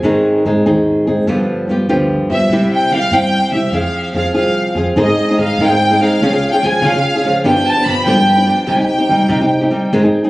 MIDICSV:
0, 0, Header, 1, 4, 480
1, 0, Start_track
1, 0, Key_signature, -4, "minor"
1, 0, Tempo, 411523
1, 51, Time_signature, 6, 3, 24, 8
1, 5801, Key_signature, -4, "major"
1, 12013, End_track
2, 0, Start_track
2, 0, Title_t, "Violin section"
2, 0, Program_c, 0, 48
2, 2706, Note_on_c, 0, 76, 73
2, 3140, Note_off_c, 0, 76, 0
2, 3182, Note_on_c, 0, 79, 80
2, 3406, Note_off_c, 0, 79, 0
2, 3423, Note_on_c, 0, 77, 97
2, 3644, Note_off_c, 0, 77, 0
2, 3659, Note_on_c, 0, 79, 97
2, 4118, Note_on_c, 0, 76, 70
2, 4127, Note_off_c, 0, 79, 0
2, 4334, Note_off_c, 0, 76, 0
2, 4343, Note_on_c, 0, 77, 72
2, 4818, Note_off_c, 0, 77, 0
2, 4832, Note_on_c, 0, 77, 71
2, 5037, Note_off_c, 0, 77, 0
2, 5051, Note_on_c, 0, 77, 62
2, 5572, Note_off_c, 0, 77, 0
2, 5816, Note_on_c, 0, 75, 67
2, 6262, Note_off_c, 0, 75, 0
2, 6306, Note_on_c, 0, 77, 76
2, 6534, Note_off_c, 0, 77, 0
2, 6551, Note_on_c, 0, 79, 85
2, 7023, Note_on_c, 0, 77, 77
2, 7025, Note_off_c, 0, 79, 0
2, 7602, Note_on_c, 0, 79, 79
2, 7623, Note_off_c, 0, 77, 0
2, 7719, Note_off_c, 0, 79, 0
2, 7731, Note_on_c, 0, 80, 84
2, 7969, Note_off_c, 0, 80, 0
2, 7980, Note_on_c, 0, 77, 92
2, 8516, Note_off_c, 0, 77, 0
2, 8696, Note_on_c, 0, 79, 85
2, 8919, Note_off_c, 0, 79, 0
2, 8944, Note_on_c, 0, 81, 99
2, 9164, Note_on_c, 0, 83, 109
2, 9170, Note_off_c, 0, 81, 0
2, 9397, Note_off_c, 0, 83, 0
2, 9397, Note_on_c, 0, 79, 92
2, 10066, Note_off_c, 0, 79, 0
2, 10107, Note_on_c, 0, 79, 68
2, 10185, Note_on_c, 0, 80, 46
2, 10187, Note_off_c, 0, 79, 0
2, 10274, Note_off_c, 0, 80, 0
2, 10280, Note_on_c, 0, 79, 74
2, 11090, Note_off_c, 0, 79, 0
2, 12013, End_track
3, 0, Start_track
3, 0, Title_t, "Nylon-string guitar"
3, 0, Program_c, 1, 24
3, 39, Note_on_c, 1, 44, 76
3, 47, Note_on_c, 1, 51, 76
3, 47, Note_on_c, 1, 56, 67
3, 51, Note_on_c, 1, 63, 74
3, 56, Note_on_c, 1, 60, 73
3, 56, Note_on_c, 1, 68, 75
3, 517, Note_off_c, 1, 60, 0
3, 520, Note_off_c, 1, 56, 0
3, 525, Note_off_c, 1, 63, 0
3, 531, Note_on_c, 1, 60, 54
3, 532, Note_off_c, 1, 68, 0
3, 534, Note_on_c, 1, 56, 59
3, 536, Note_off_c, 1, 44, 0
3, 539, Note_off_c, 1, 51, 0
3, 539, Note_on_c, 1, 63, 58
3, 546, Note_on_c, 1, 68, 57
3, 756, Note_off_c, 1, 68, 0
3, 764, Note_off_c, 1, 63, 0
3, 766, Note_off_c, 1, 60, 0
3, 767, Note_off_c, 1, 56, 0
3, 770, Note_on_c, 1, 68, 64
3, 778, Note_on_c, 1, 63, 62
3, 779, Note_on_c, 1, 51, 52
3, 780, Note_on_c, 1, 60, 52
3, 781, Note_on_c, 1, 44, 52
3, 781, Note_on_c, 1, 56, 58
3, 1235, Note_off_c, 1, 68, 0
3, 1244, Note_off_c, 1, 63, 0
3, 1249, Note_off_c, 1, 60, 0
3, 1249, Note_on_c, 1, 68, 47
3, 1252, Note_off_c, 1, 56, 0
3, 1258, Note_on_c, 1, 63, 39
3, 1262, Note_off_c, 1, 51, 0
3, 1263, Note_off_c, 1, 44, 0
3, 1263, Note_on_c, 1, 60, 44
3, 1266, Note_on_c, 1, 56, 38
3, 1483, Note_off_c, 1, 56, 0
3, 1485, Note_on_c, 1, 43, 72
3, 1487, Note_on_c, 1, 53, 75
3, 1489, Note_off_c, 1, 68, 0
3, 1494, Note_off_c, 1, 63, 0
3, 1494, Note_on_c, 1, 50, 78
3, 1495, Note_off_c, 1, 60, 0
3, 1499, Note_on_c, 1, 59, 77
3, 1499, Note_on_c, 1, 65, 79
3, 1500, Note_on_c, 1, 67, 83
3, 1959, Note_off_c, 1, 53, 0
3, 1963, Note_off_c, 1, 59, 0
3, 1967, Note_off_c, 1, 65, 0
3, 1969, Note_off_c, 1, 43, 0
3, 1973, Note_off_c, 1, 50, 0
3, 1973, Note_on_c, 1, 53, 51
3, 1977, Note_on_c, 1, 59, 53
3, 1981, Note_on_c, 1, 65, 58
3, 1989, Note_off_c, 1, 67, 0
3, 1994, Note_on_c, 1, 67, 68
3, 2193, Note_off_c, 1, 65, 0
3, 2196, Note_off_c, 1, 67, 0
3, 2197, Note_off_c, 1, 53, 0
3, 2198, Note_off_c, 1, 59, 0
3, 2207, Note_on_c, 1, 65, 73
3, 2210, Note_on_c, 1, 43, 54
3, 2210, Note_on_c, 1, 67, 73
3, 2211, Note_on_c, 1, 53, 64
3, 2212, Note_on_c, 1, 59, 68
3, 2214, Note_on_c, 1, 50, 60
3, 2671, Note_off_c, 1, 67, 0
3, 2684, Note_off_c, 1, 65, 0
3, 2685, Note_on_c, 1, 67, 43
3, 2686, Note_off_c, 1, 43, 0
3, 2686, Note_off_c, 1, 53, 0
3, 2687, Note_off_c, 1, 59, 0
3, 2688, Note_off_c, 1, 50, 0
3, 2703, Note_on_c, 1, 65, 41
3, 2705, Note_on_c, 1, 59, 43
3, 2708, Note_on_c, 1, 53, 36
3, 2917, Note_off_c, 1, 67, 0
3, 2926, Note_off_c, 1, 65, 0
3, 2927, Note_off_c, 1, 59, 0
3, 2929, Note_off_c, 1, 53, 0
3, 2938, Note_on_c, 1, 48, 73
3, 2939, Note_on_c, 1, 55, 61
3, 2943, Note_on_c, 1, 60, 77
3, 2948, Note_on_c, 1, 64, 87
3, 2949, Note_on_c, 1, 67, 70
3, 3398, Note_off_c, 1, 55, 0
3, 3406, Note_off_c, 1, 48, 0
3, 3408, Note_off_c, 1, 64, 0
3, 3412, Note_off_c, 1, 67, 0
3, 3412, Note_on_c, 1, 55, 57
3, 3420, Note_off_c, 1, 60, 0
3, 3422, Note_on_c, 1, 64, 57
3, 3425, Note_on_c, 1, 60, 52
3, 3432, Note_on_c, 1, 67, 55
3, 3637, Note_off_c, 1, 67, 0
3, 3639, Note_off_c, 1, 55, 0
3, 3644, Note_off_c, 1, 64, 0
3, 3645, Note_off_c, 1, 60, 0
3, 3651, Note_on_c, 1, 67, 61
3, 3655, Note_on_c, 1, 55, 50
3, 3661, Note_on_c, 1, 64, 62
3, 3665, Note_on_c, 1, 48, 52
3, 3665, Note_on_c, 1, 60, 57
3, 4111, Note_off_c, 1, 67, 0
3, 4122, Note_off_c, 1, 64, 0
3, 4125, Note_off_c, 1, 55, 0
3, 4125, Note_on_c, 1, 67, 48
3, 4130, Note_off_c, 1, 48, 0
3, 4136, Note_on_c, 1, 64, 35
3, 4141, Note_off_c, 1, 60, 0
3, 4146, Note_on_c, 1, 60, 34
3, 4344, Note_off_c, 1, 60, 0
3, 4350, Note_on_c, 1, 53, 68
3, 4353, Note_off_c, 1, 67, 0
3, 4358, Note_on_c, 1, 60, 65
3, 4359, Note_off_c, 1, 64, 0
3, 4365, Note_on_c, 1, 65, 60
3, 4365, Note_on_c, 1, 68, 63
3, 4820, Note_off_c, 1, 53, 0
3, 4834, Note_on_c, 1, 53, 51
3, 4837, Note_off_c, 1, 60, 0
3, 4841, Note_off_c, 1, 65, 0
3, 4842, Note_on_c, 1, 60, 52
3, 4847, Note_off_c, 1, 68, 0
3, 4852, Note_on_c, 1, 68, 45
3, 4856, Note_on_c, 1, 65, 54
3, 5053, Note_off_c, 1, 68, 0
3, 5054, Note_off_c, 1, 65, 0
3, 5056, Note_off_c, 1, 60, 0
3, 5065, Note_off_c, 1, 53, 0
3, 5067, Note_on_c, 1, 68, 52
3, 5068, Note_on_c, 1, 65, 56
3, 5070, Note_on_c, 1, 60, 48
3, 5079, Note_on_c, 1, 53, 41
3, 5547, Note_off_c, 1, 65, 0
3, 5555, Note_off_c, 1, 68, 0
3, 5559, Note_on_c, 1, 68, 42
3, 5561, Note_off_c, 1, 60, 0
3, 5561, Note_on_c, 1, 65, 40
3, 5565, Note_off_c, 1, 53, 0
3, 5577, Note_on_c, 1, 60, 33
3, 5788, Note_off_c, 1, 68, 0
3, 5789, Note_off_c, 1, 65, 0
3, 5790, Note_off_c, 1, 60, 0
3, 5793, Note_on_c, 1, 44, 70
3, 5794, Note_on_c, 1, 63, 74
3, 5795, Note_on_c, 1, 56, 68
3, 5799, Note_on_c, 1, 51, 59
3, 5802, Note_on_c, 1, 68, 77
3, 5804, Note_on_c, 1, 60, 82
3, 5901, Note_off_c, 1, 68, 0
3, 5915, Note_on_c, 1, 68, 56
3, 5917, Note_off_c, 1, 63, 0
3, 5918, Note_off_c, 1, 60, 0
3, 5922, Note_off_c, 1, 44, 0
3, 5923, Note_off_c, 1, 56, 0
3, 5924, Note_off_c, 1, 51, 0
3, 5931, Note_on_c, 1, 63, 43
3, 5932, Note_on_c, 1, 60, 38
3, 5941, Note_on_c, 1, 56, 39
3, 6159, Note_off_c, 1, 68, 0
3, 6160, Note_off_c, 1, 63, 0
3, 6173, Note_off_c, 1, 60, 0
3, 6173, Note_on_c, 1, 68, 39
3, 6174, Note_on_c, 1, 63, 43
3, 6177, Note_off_c, 1, 56, 0
3, 6187, Note_on_c, 1, 60, 44
3, 6190, Note_on_c, 1, 56, 38
3, 6267, Note_off_c, 1, 56, 0
3, 6279, Note_off_c, 1, 60, 0
3, 6281, Note_off_c, 1, 68, 0
3, 6281, Note_on_c, 1, 56, 54
3, 6282, Note_off_c, 1, 63, 0
3, 6293, Note_on_c, 1, 60, 53
3, 6295, Note_on_c, 1, 68, 57
3, 6296, Note_on_c, 1, 63, 61
3, 6517, Note_off_c, 1, 63, 0
3, 6518, Note_off_c, 1, 60, 0
3, 6521, Note_off_c, 1, 56, 0
3, 6529, Note_off_c, 1, 68, 0
3, 6530, Note_on_c, 1, 44, 74
3, 6531, Note_on_c, 1, 63, 69
3, 6532, Note_on_c, 1, 60, 72
3, 6534, Note_on_c, 1, 51, 71
3, 6534, Note_on_c, 1, 56, 64
3, 6544, Note_on_c, 1, 68, 72
3, 6638, Note_off_c, 1, 68, 0
3, 6648, Note_off_c, 1, 63, 0
3, 6652, Note_off_c, 1, 44, 0
3, 6652, Note_on_c, 1, 68, 40
3, 6653, Note_off_c, 1, 60, 0
3, 6654, Note_off_c, 1, 56, 0
3, 6655, Note_off_c, 1, 51, 0
3, 6662, Note_on_c, 1, 63, 39
3, 6671, Note_on_c, 1, 60, 40
3, 6675, Note_on_c, 1, 56, 34
3, 6876, Note_off_c, 1, 68, 0
3, 6885, Note_off_c, 1, 63, 0
3, 6890, Note_off_c, 1, 60, 0
3, 6890, Note_on_c, 1, 68, 49
3, 6893, Note_off_c, 1, 56, 0
3, 6899, Note_on_c, 1, 63, 52
3, 6904, Note_on_c, 1, 60, 35
3, 6907, Note_on_c, 1, 56, 36
3, 6989, Note_off_c, 1, 56, 0
3, 7001, Note_off_c, 1, 60, 0
3, 7003, Note_on_c, 1, 56, 54
3, 7004, Note_off_c, 1, 63, 0
3, 7010, Note_off_c, 1, 68, 0
3, 7015, Note_on_c, 1, 60, 58
3, 7018, Note_on_c, 1, 63, 61
3, 7027, Note_on_c, 1, 68, 65
3, 7245, Note_off_c, 1, 56, 0
3, 7251, Note_off_c, 1, 60, 0
3, 7252, Note_off_c, 1, 63, 0
3, 7257, Note_off_c, 1, 68, 0
3, 7260, Note_on_c, 1, 49, 74
3, 7260, Note_on_c, 1, 53, 77
3, 7265, Note_on_c, 1, 61, 82
3, 7265, Note_on_c, 1, 65, 71
3, 7269, Note_on_c, 1, 68, 73
3, 7360, Note_off_c, 1, 65, 0
3, 7362, Note_off_c, 1, 68, 0
3, 7374, Note_on_c, 1, 65, 49
3, 7376, Note_off_c, 1, 61, 0
3, 7376, Note_on_c, 1, 68, 52
3, 7380, Note_off_c, 1, 49, 0
3, 7380, Note_off_c, 1, 53, 0
3, 7390, Note_on_c, 1, 61, 46
3, 7605, Note_off_c, 1, 68, 0
3, 7612, Note_off_c, 1, 65, 0
3, 7619, Note_on_c, 1, 68, 50
3, 7625, Note_off_c, 1, 61, 0
3, 7626, Note_on_c, 1, 65, 45
3, 7637, Note_on_c, 1, 61, 46
3, 7731, Note_off_c, 1, 61, 0
3, 7736, Note_off_c, 1, 65, 0
3, 7736, Note_off_c, 1, 68, 0
3, 7739, Note_on_c, 1, 53, 61
3, 7745, Note_on_c, 1, 61, 55
3, 7750, Note_on_c, 1, 65, 56
3, 7764, Note_on_c, 1, 68, 67
3, 7959, Note_off_c, 1, 53, 0
3, 7959, Note_off_c, 1, 61, 0
3, 7967, Note_off_c, 1, 68, 0
3, 7967, Note_on_c, 1, 49, 65
3, 7968, Note_off_c, 1, 65, 0
3, 7973, Note_on_c, 1, 53, 70
3, 7973, Note_on_c, 1, 61, 69
3, 7981, Note_on_c, 1, 68, 70
3, 7982, Note_on_c, 1, 65, 85
3, 8089, Note_off_c, 1, 68, 0
3, 8093, Note_off_c, 1, 49, 0
3, 8096, Note_off_c, 1, 53, 0
3, 8096, Note_off_c, 1, 61, 0
3, 8098, Note_off_c, 1, 65, 0
3, 8103, Note_on_c, 1, 68, 37
3, 8112, Note_on_c, 1, 65, 40
3, 8117, Note_on_c, 1, 61, 39
3, 8329, Note_off_c, 1, 68, 0
3, 8343, Note_on_c, 1, 68, 53
3, 8345, Note_off_c, 1, 65, 0
3, 8347, Note_off_c, 1, 61, 0
3, 8358, Note_on_c, 1, 65, 45
3, 8365, Note_on_c, 1, 61, 39
3, 8446, Note_off_c, 1, 61, 0
3, 8451, Note_off_c, 1, 65, 0
3, 8454, Note_on_c, 1, 53, 58
3, 8457, Note_off_c, 1, 68, 0
3, 8460, Note_on_c, 1, 61, 56
3, 8465, Note_on_c, 1, 65, 68
3, 8477, Note_on_c, 1, 68, 61
3, 8678, Note_off_c, 1, 53, 0
3, 8683, Note_off_c, 1, 61, 0
3, 8684, Note_on_c, 1, 43, 67
3, 8688, Note_on_c, 1, 59, 85
3, 8690, Note_off_c, 1, 65, 0
3, 8691, Note_on_c, 1, 50, 72
3, 8692, Note_on_c, 1, 53, 71
3, 8695, Note_on_c, 1, 62, 90
3, 8698, Note_off_c, 1, 68, 0
3, 8703, Note_on_c, 1, 67, 70
3, 8807, Note_off_c, 1, 43, 0
3, 8809, Note_off_c, 1, 59, 0
3, 8811, Note_off_c, 1, 50, 0
3, 8811, Note_off_c, 1, 53, 0
3, 8813, Note_off_c, 1, 62, 0
3, 8814, Note_off_c, 1, 67, 0
3, 8828, Note_on_c, 1, 67, 56
3, 8838, Note_on_c, 1, 62, 47
3, 8846, Note_on_c, 1, 59, 42
3, 8854, Note_on_c, 1, 53, 41
3, 9040, Note_off_c, 1, 67, 0
3, 9052, Note_off_c, 1, 62, 0
3, 9054, Note_on_c, 1, 67, 41
3, 9055, Note_off_c, 1, 59, 0
3, 9060, Note_off_c, 1, 53, 0
3, 9066, Note_on_c, 1, 62, 52
3, 9069, Note_on_c, 1, 59, 41
3, 9074, Note_on_c, 1, 53, 36
3, 9164, Note_off_c, 1, 53, 0
3, 9165, Note_off_c, 1, 62, 0
3, 9166, Note_off_c, 1, 59, 0
3, 9167, Note_off_c, 1, 67, 0
3, 9178, Note_on_c, 1, 53, 55
3, 9179, Note_on_c, 1, 62, 53
3, 9180, Note_on_c, 1, 59, 62
3, 9188, Note_on_c, 1, 67, 62
3, 9393, Note_off_c, 1, 53, 0
3, 9396, Note_off_c, 1, 62, 0
3, 9401, Note_off_c, 1, 59, 0
3, 9401, Note_on_c, 1, 43, 74
3, 9407, Note_on_c, 1, 53, 74
3, 9408, Note_on_c, 1, 50, 75
3, 9409, Note_off_c, 1, 67, 0
3, 9410, Note_on_c, 1, 62, 70
3, 9415, Note_on_c, 1, 59, 70
3, 9421, Note_on_c, 1, 67, 80
3, 9513, Note_off_c, 1, 67, 0
3, 9518, Note_off_c, 1, 62, 0
3, 9522, Note_off_c, 1, 43, 0
3, 9524, Note_off_c, 1, 53, 0
3, 9524, Note_off_c, 1, 59, 0
3, 9525, Note_off_c, 1, 50, 0
3, 9527, Note_on_c, 1, 67, 48
3, 9532, Note_on_c, 1, 62, 37
3, 9538, Note_on_c, 1, 59, 45
3, 9547, Note_on_c, 1, 53, 30
3, 9747, Note_off_c, 1, 67, 0
3, 9749, Note_off_c, 1, 62, 0
3, 9751, Note_off_c, 1, 59, 0
3, 9758, Note_off_c, 1, 53, 0
3, 9761, Note_on_c, 1, 67, 45
3, 9763, Note_on_c, 1, 62, 45
3, 9765, Note_on_c, 1, 59, 36
3, 9772, Note_on_c, 1, 53, 42
3, 9845, Note_off_c, 1, 53, 0
3, 9853, Note_off_c, 1, 59, 0
3, 9859, Note_on_c, 1, 53, 55
3, 9860, Note_off_c, 1, 67, 0
3, 9863, Note_off_c, 1, 62, 0
3, 9867, Note_on_c, 1, 59, 54
3, 9874, Note_on_c, 1, 67, 59
3, 9877, Note_on_c, 1, 62, 53
3, 10101, Note_off_c, 1, 53, 0
3, 10103, Note_off_c, 1, 67, 0
3, 10106, Note_on_c, 1, 55, 60
3, 10107, Note_off_c, 1, 59, 0
3, 10111, Note_on_c, 1, 48, 66
3, 10112, Note_off_c, 1, 62, 0
3, 10117, Note_on_c, 1, 67, 75
3, 10118, Note_on_c, 1, 60, 71
3, 10122, Note_on_c, 1, 63, 69
3, 10205, Note_off_c, 1, 67, 0
3, 10217, Note_off_c, 1, 63, 0
3, 10219, Note_on_c, 1, 67, 50
3, 10227, Note_off_c, 1, 60, 0
3, 10231, Note_on_c, 1, 63, 46
3, 10233, Note_off_c, 1, 55, 0
3, 10236, Note_off_c, 1, 48, 0
3, 10241, Note_on_c, 1, 60, 37
3, 10463, Note_off_c, 1, 67, 0
3, 10477, Note_off_c, 1, 63, 0
3, 10477, Note_on_c, 1, 67, 39
3, 10482, Note_off_c, 1, 60, 0
3, 10492, Note_on_c, 1, 63, 34
3, 10497, Note_on_c, 1, 60, 37
3, 10597, Note_off_c, 1, 60, 0
3, 10597, Note_off_c, 1, 63, 0
3, 10597, Note_off_c, 1, 67, 0
3, 10601, Note_on_c, 1, 55, 43
3, 10611, Note_on_c, 1, 60, 46
3, 10611, Note_on_c, 1, 63, 53
3, 10622, Note_on_c, 1, 67, 55
3, 10820, Note_off_c, 1, 55, 0
3, 10826, Note_off_c, 1, 63, 0
3, 10827, Note_off_c, 1, 60, 0
3, 10827, Note_off_c, 1, 67, 0
3, 10828, Note_on_c, 1, 48, 75
3, 10834, Note_on_c, 1, 55, 61
3, 10840, Note_on_c, 1, 63, 79
3, 10841, Note_on_c, 1, 60, 76
3, 10841, Note_on_c, 1, 67, 66
3, 10959, Note_off_c, 1, 48, 0
3, 10960, Note_off_c, 1, 67, 0
3, 10961, Note_off_c, 1, 55, 0
3, 10965, Note_off_c, 1, 60, 0
3, 10965, Note_off_c, 1, 63, 0
3, 10974, Note_on_c, 1, 67, 45
3, 10983, Note_on_c, 1, 63, 46
3, 10994, Note_on_c, 1, 60, 39
3, 11191, Note_off_c, 1, 67, 0
3, 11204, Note_off_c, 1, 63, 0
3, 11205, Note_on_c, 1, 67, 45
3, 11213, Note_off_c, 1, 60, 0
3, 11218, Note_on_c, 1, 63, 48
3, 11227, Note_on_c, 1, 60, 43
3, 11313, Note_off_c, 1, 60, 0
3, 11319, Note_on_c, 1, 55, 60
3, 11321, Note_off_c, 1, 63, 0
3, 11327, Note_off_c, 1, 67, 0
3, 11327, Note_on_c, 1, 60, 58
3, 11335, Note_on_c, 1, 63, 57
3, 11342, Note_on_c, 1, 67, 50
3, 11563, Note_off_c, 1, 55, 0
3, 11567, Note_off_c, 1, 60, 0
3, 11571, Note_off_c, 1, 63, 0
3, 11575, Note_off_c, 1, 67, 0
3, 11579, Note_on_c, 1, 51, 68
3, 11581, Note_on_c, 1, 44, 75
3, 11587, Note_on_c, 1, 56, 76
3, 11587, Note_on_c, 1, 60, 69
3, 11589, Note_on_c, 1, 68, 86
3, 11590, Note_on_c, 1, 63, 68
3, 11691, Note_off_c, 1, 68, 0
3, 11694, Note_off_c, 1, 63, 0
3, 11700, Note_off_c, 1, 44, 0
3, 11700, Note_off_c, 1, 51, 0
3, 11704, Note_off_c, 1, 56, 0
3, 11704, Note_off_c, 1, 60, 0
3, 11705, Note_on_c, 1, 68, 58
3, 11708, Note_on_c, 1, 63, 46
3, 11716, Note_on_c, 1, 60, 48
3, 11725, Note_on_c, 1, 56, 42
3, 11932, Note_off_c, 1, 68, 0
3, 11937, Note_off_c, 1, 63, 0
3, 11939, Note_off_c, 1, 60, 0
3, 11944, Note_off_c, 1, 56, 0
3, 11946, Note_on_c, 1, 68, 49
3, 11951, Note_on_c, 1, 63, 43
3, 11953, Note_on_c, 1, 60, 43
3, 11958, Note_on_c, 1, 56, 44
3, 12013, Note_off_c, 1, 56, 0
3, 12013, Note_off_c, 1, 60, 0
3, 12013, Note_off_c, 1, 63, 0
3, 12013, Note_off_c, 1, 68, 0
3, 12013, End_track
4, 0, Start_track
4, 0, Title_t, "Upright bass"
4, 0, Program_c, 2, 32
4, 29, Note_on_c, 2, 44, 64
4, 200, Note_off_c, 2, 44, 0
4, 528, Note_on_c, 2, 44, 58
4, 687, Note_off_c, 2, 44, 0
4, 770, Note_on_c, 2, 39, 64
4, 1087, Note_off_c, 2, 39, 0
4, 1254, Note_on_c, 2, 44, 61
4, 1408, Note_off_c, 2, 44, 0
4, 1479, Note_on_c, 2, 43, 63
4, 1644, Note_off_c, 2, 43, 0
4, 1959, Note_on_c, 2, 43, 55
4, 2115, Note_off_c, 2, 43, 0
4, 2201, Note_on_c, 2, 38, 63
4, 2513, Note_off_c, 2, 38, 0
4, 2680, Note_on_c, 2, 43, 68
4, 2833, Note_off_c, 2, 43, 0
4, 2913, Note_on_c, 2, 36, 73
4, 3073, Note_off_c, 2, 36, 0
4, 3397, Note_on_c, 2, 36, 64
4, 3549, Note_off_c, 2, 36, 0
4, 3627, Note_on_c, 2, 43, 74
4, 3941, Note_off_c, 2, 43, 0
4, 4103, Note_on_c, 2, 36, 78
4, 4259, Note_off_c, 2, 36, 0
4, 4333, Note_on_c, 2, 41, 65
4, 4499, Note_off_c, 2, 41, 0
4, 4821, Note_on_c, 2, 41, 60
4, 4980, Note_off_c, 2, 41, 0
4, 5064, Note_on_c, 2, 36, 54
4, 5385, Note_off_c, 2, 36, 0
4, 5540, Note_on_c, 2, 41, 75
4, 5702, Note_off_c, 2, 41, 0
4, 5786, Note_on_c, 2, 44, 74
4, 5953, Note_off_c, 2, 44, 0
4, 6277, Note_on_c, 2, 44, 64
4, 6435, Note_off_c, 2, 44, 0
4, 6507, Note_on_c, 2, 44, 73
4, 6984, Note_off_c, 2, 44, 0
4, 7239, Note_on_c, 2, 37, 75
4, 7405, Note_off_c, 2, 37, 0
4, 7731, Note_on_c, 2, 37, 67
4, 7886, Note_off_c, 2, 37, 0
4, 7955, Note_on_c, 2, 49, 88
4, 8425, Note_off_c, 2, 49, 0
4, 8679, Note_on_c, 2, 31, 72
4, 8840, Note_off_c, 2, 31, 0
4, 9167, Note_on_c, 2, 31, 77
4, 9317, Note_off_c, 2, 31, 0
4, 9398, Note_on_c, 2, 43, 74
4, 9863, Note_off_c, 2, 43, 0
4, 10115, Note_on_c, 2, 36, 75
4, 10276, Note_off_c, 2, 36, 0
4, 10605, Note_on_c, 2, 36, 64
4, 10758, Note_off_c, 2, 36, 0
4, 10840, Note_on_c, 2, 48, 79
4, 11314, Note_off_c, 2, 48, 0
4, 11579, Note_on_c, 2, 32, 78
4, 11739, Note_off_c, 2, 32, 0
4, 12013, End_track
0, 0, End_of_file